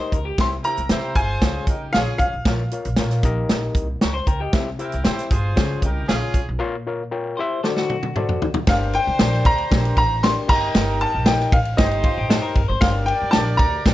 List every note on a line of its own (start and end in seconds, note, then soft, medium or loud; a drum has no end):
0.00 0.18 D#4 medium
0.00 0.18 G4 medium
0.00 0.18 A#4 medium
0.00 0.12 C5 medium
0.00 0.18 D#5 loud
0.12 0.32 C#2 medium
0.12 0.25 A#4 medium
0.12 kick medium
0.12 closed hi-hat medium
0.25 0.50 G4 medium
0.38 0.57 C2 loud
0.38 1.13 C3 medium
0.38 0.55 E4 loud
0.38 0.55 G4 medium
0.38 0.55 C5 medium
0.38 0.55 E5 loud
0.38 0.46 C6 loud
0.38 kick loud
0.38 snare loud
0.38 closed hi-hat medium
0.63 0.85 E4 medium
0.63 0.80 E4 medium
0.63 0.85 G4 medium
0.63 0.81 G4 medium
0.63 0.85 A#4 medium
0.63 0.81 C5 medium
0.63 0.81 G5 medium
0.63 1.18 A#5 loud
0.63 closed hi-hat medium
0.77 0.87 C2 medium
0.77 closed hi-hat soft
0.89 1.09 C3 loud
0.89 1.11 E4 medium
0.89 1.22 E4 medium
0.89 1.11 G4 medium
0.89 1.22 G4 medium
0.89 1.11 C5 medium
0.89 1.22 C5 medium
0.89 1.22 E5 medium
0.89 snare loud
0.89 closed hi-hat medium
1.15 1.35 G1 medium
1.15 1.65 F4 medium
1.15 1.65 G#4 medium
1.15 1.65 C5 loud
1.15 1.64 G#5 medium
1.15 kick loud
1.15 closed hi-hat medium
1.41 1.61 C#2 loud
1.41 2.17 C#3 medium
1.41 1.74 F4 medium
1.41 1.74 G#4 medium
1.41 1.75 C#5 medium
1.41 1.75 F5 medium
1.41 kick medium
1.41 snare loud
1.41 closed hi-hat medium
1.67 1.86 C2 medium
1.67 1.89 D#4 medium
1.67 1.89 G4 medium
1.67 1.89 A#4 medium
1.67 kick medium
1.67 closed hi-hat medium
1.93 2.04 A#1 medium
1.93 2.31 C#4 medium
1.93 2.31 F4 medium
1.93 2.26 F4 medium
1.93 2.31 G#4 loud
1.93 2.26 G#4 medium
1.93 1.99 F5 loud
1.93 snare medium
1.93 closed hi-hat medium
1.97 2.26 C#5 medium
1.97 2.27 F5 medium
2.18 2.29 C2 medium
2.18 3.71 F5 loud
2.18 kick medium
2.18 closed hi-hat medium
2.33 2.43 B1 medium
2.45 2.65 A#1 medium
2.45 3.20 A#2 medium
2.45 2.62 F4 medium
2.45 2.62 A#4 medium
2.45 2.62 C#5 medium
2.45 2.62 F5 loud
2.45 kick loud
2.45 snare loud
2.45 closed hi-hat medium
2.71 2.88 F4 medium
2.71 2.88 A#4 medium
2.71 2.88 C#5 medium
2.71 2.88 F5 medium
2.71 closed hi-hat medium
2.85 2.95 A#1 loud
2.85 closed hi-hat medium
2.96 3.17 A#2 loud
2.96 3.25 F4 medium
2.96 3.24 A#4 medium
2.96 3.25 C#5 medium
2.96 3.25 F5 medium
2.96 snare loud
2.96 closed hi-hat loud
3.10 snare soft
3.10 closed hi-hat medium
3.23 3.42 A#1 loud
3.23 3.98 A#2 medium
3.23 3.86 D#4 loud
3.23 3.87 G4 medium
3.23 3.87 A#4 loud
3.23 3.87 D#5 loud
3.23 kick medium
3.23 closed hi-hat medium
3.49 3.69 A#1 medium
3.49 snare loud
3.49 closed hi-hat medium
3.75 3.94 C2 medium
3.75 kick medium
3.75 closed hi-hat medium
4.01 4.21 C#2 medium
4.01 4.14 A#5 soft
4.01 4.14 C#6 medium
4.01 snare loud
4.01 closed hi-hat medium
4.14 4.27 C5 medium
4.14 4.26 C6 medium
4.27 4.46 C#2 medium
4.27 4.40 A#4 medium
4.27 4.40 G5 medium
4.27 4.40 A#5 medium
4.27 kick medium
4.27 closed hi-hat medium
4.40 4.65 G4 medium
4.40 4.66 D#5 medium
4.40 4.65 G5 medium
4.53 4.72 C2 loud
4.53 5.27 C3 medium
4.53 4.69 E4 loud
4.53 4.69 G4 loud
4.53 4.69 C5 loud
4.53 4.69 E5 loud
4.53 kick loud
4.53 snare loud
4.53 closed hi-hat medium
4.79 4.95 E4 medium
4.79 5.01 E4 medium
4.79 4.95 G4 medium
4.79 5.01 G4 medium
4.79 5.01 A#4 medium
4.79 4.95 C5 medium
4.79 4.95 E5 medium
4.79 closed hi-hat medium
4.92 5.03 C2 medium
4.92 closed hi-hat soft
5.04 5.25 C3 loud
5.04 5.36 E4 medium
5.04 5.26 E4 medium
5.04 5.35 G4 medium
5.04 5.26 G4 medium
5.04 5.35 C5 medium
5.04 5.26 C5 medium
5.04 5.36 G5 loud
5.04 snare loud
5.04 closed hi-hat medium
5.18 snare soft
5.18 closed hi-hat medium
5.31 5.50 G1 loud
5.31 5.80 F4 medium
5.31 5.80 G#4 medium
5.31 5.80 C5 loud
5.31 kick medium
5.31 closed hi-hat medium
5.56 5.76 C#2 loud
5.56 6.30 C#3 medium
5.56 5.87 F4 medium
5.56 5.88 G#4 medium
5.56 5.88 C#5 medium
5.56 5.88 F5 loud
5.56 kick medium
5.56 snare loud
5.56 closed hi-hat medium
5.82 6.01 C2 loud
5.82 6.04 D#4 medium
5.82 6.04 G4 medium
5.82 6.04 A#4 medium
5.82 kick medium
5.82 closed hi-hat medium
6.08 6.19 A#1 medium
6.08 6.45 C#4 medium
6.08 6.39 F4 medium
6.08 6.46 F4 loud
6.08 6.45 G#4 loud
6.08 6.40 G#4 medium
6.08 6.40 C#5 medium
6.08 6.40 F5 loud
6.08 snare medium
6.08 closed hi-hat medium
6.34 6.44 C2 medium
6.34 kick medium
6.34 closed hi-hat medium
6.49 6.58 B1 medium
6.59 7.34 A#2 medium
6.59 6.76 F4 loud
6.59 6.75 A#4 loud
6.59 6.76 C#5 loud
6.59 6.76 F5 loud
6.87 7.02 F4 medium
6.87 7.02 A#4 medium
6.87 7.02 C#5 medium
6.87 7.03 F5 medium
7.11 7.38 F4 medium
7.11 7.38 A#4 medium
7.11 7.38 C#5 medium
7.11 7.38 G5 medium
7.37 7.59 E4 loud
7.37 7.59 G4 medium
7.37 7.62 C5 medium
7.37 7.59 C5 medium
7.37 7.60 E5 loud
7.63 8.38 D3 medium
7.63 7.95 F#4 medium
7.63 7.76 A4 medium
7.63 7.95 A4 medium
7.63 7.95 C5 medium
7.63 7.95 D5 medium
7.63 snare medium
7.76 8.51 F#4 medium
7.76 snare medium
7.90 high tom medium
8.03 high tom medium
8.16 8.47 F#4 medium
8.16 8.47 A4 medium
8.16 8.47 C5 medium
8.16 8.47 D5 medium
8.16 mid tom medium
8.29 mid tom medium
8.42 floor tom medium
8.54 floor tom loud
8.67 8.96 G1 medium
8.67 9.42 G2 medium
8.67 10.20 D4 medium
8.67 8.99 D4 medium
8.67 10.20 G4 medium
8.67 8.99 G4 medium
8.67 8.99 A#4 medium
8.67 10.20 C5 loud
8.67 9.00 D5 medium
8.67 8.95 F5 loud
8.67 9.00 G5 medium
8.67 kick loud
8.67 snare loud
8.67 ride medium
8.93 9.42 G5 loud
8.93 ride medium
9.07 9.16 C2 loud
9.19 9.38 A#1 medium
9.19 9.50 D4 medium
9.19 9.51 G4 medium
9.19 9.51 A#4 medium
9.19 9.51 D5 medium
9.19 9.51 G5 medium
9.19 snare loud
9.19 ride medium
9.33 snare soft
9.45 9.64 D2 loud
9.45 9.96 A#5 loud
9.45 kick loud
9.45 ride medium
9.58 ride soft
9.71 9.90 A#1 loud
9.71 10.02 D4 medium
9.71 10.02 G4 medium
9.71 10.02 A#4 medium
9.71 10.02 D5 medium
9.71 10.03 G5 medium
9.71 kick loud
9.71 snare loud
9.71 ride medium
9.85 ride medium
9.97 10.34 A1 loud
9.97 10.24 A#5 loud
9.97 kick medium
9.97 ride medium
10.23 10.49 D4 medium
10.23 10.47 G4 medium
10.23 10.48 A#4 medium
10.23 10.49 D5 medium
10.23 10.49 G5 medium
10.23 10.50 C6 loud
10.23 snare loud
10.23 ride medium
10.48 10.68 G1 medium
10.48 11.23 G2 medium
10.48 11.11 D#4 medium
10.48 11.51 D#4 medium
10.48 11.11 G4 medium
10.48 11.51 G4 medium
10.48 11.11 A#4 medium
10.48 11.51 A#4 medium
10.48 11.11 D#5 medium
10.48 10.56 F#5 medium
10.48 10.97 A#5 loud
10.48 kick loud
10.48 crash medium
10.56 11.14 G5 loud
10.75 11.03 G1 loud
10.75 snare loud
10.75 ride medium
11.01 11.25 A5 medium
11.01 ride medium
11.14 11.42 A#1 medium
11.26 11.57 D#4 medium
11.26 11.58 G4 medium
11.26 11.58 A#4 medium
11.26 11.58 D#5 medium
11.26 11.53 G5 medium
11.26 11.58 G5 medium
11.26 snare loud
11.26 ride medium
11.40 snare soft
11.52 11.71 A1 medium
11.52 11.79 F5 medium
11.52 kick loud
11.52 ride medium
11.65 ride soft
11.77 12.06 G1 loud
11.77 12.52 G2 medium
11.77 12.09 D#4 medium
11.77 12.55 D#4 medium
11.77 12.54 G4 medium
11.77 12.09 G4 medium
11.77 12.54 C5 loud
11.77 12.09 C5 medium
11.77 12.52 D#5 medium
11.77 12.09 D#5 medium
11.77 12.10 G5 medium
11.77 kick loud
11.77 snare loud
11.77 ride medium
11.91 ride soft
12.04 12.18 F4 medium
12.04 kick medium
12.04 ride medium
12.17 12.36 A1 medium
12.17 12.30 G4 medium
12.29 12.61 D#4 medium
12.29 12.61 G4 medium
12.29 12.42 A4 medium
12.29 12.61 C5 medium
12.29 12.61 D#5 medium
12.29 12.61 G5 medium
12.29 snare loud
12.29 ride medium
12.42 12.67 A#4 medium
12.56 12.65 G1 loud
12.56 kick medium
12.56 ride medium
12.68 12.79 G#1 loud
12.68 12.93 C5 medium
12.81 13.10 G1 loud
12.81 13.56 G2 medium
12.81 13.13 D4 medium
12.81 13.94 G4 medium
12.81 13.13 G4 medium
12.81 13.12 A#4 medium
12.81 13.94 A#4 medium
12.81 13.94 D5 loud
12.81 13.13 D5 medium
12.81 13.08 F5 loud
12.81 13.13 G5 medium
12.81 kick loud
12.81 snare loud
12.81 ride medium
13.06 13.34 G5 loud
13.06 ride medium
13.22 13.31 C2 medium
13.31 13.53 A#1 medium
13.31 13.65 D4 medium
13.31 13.65 G4 medium
13.31 13.65 A#4 medium
13.31 13.65 D5 medium
13.31 13.65 G5 medium
13.31 13.37 A5 loud
13.31 snare loud
13.31 ride medium
13.57 13.78 D2 loud
13.57 13.94 A#5 loud
13.57 kick loud
13.57 ride medium
13.86 13.94 A#1 loud
13.86 13.94 D4 medium
13.86 13.94 G4 medium
13.86 13.94 A#4 medium
13.86 13.94 D5 medium
13.86 13.94 G5 medium
13.86 kick medium
13.86 snare loud
13.86 ride medium